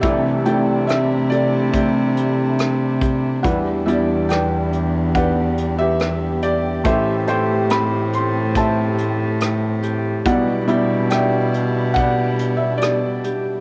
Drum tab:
HH |xxxxxxxx|xxxxxxxx|xxxxxxxx|xxxxxxxx|
SD |--r---r-|--r---r-|--r---r-|--r---r-|
BD |o---o--o|o---o---|o---o---|o---o---|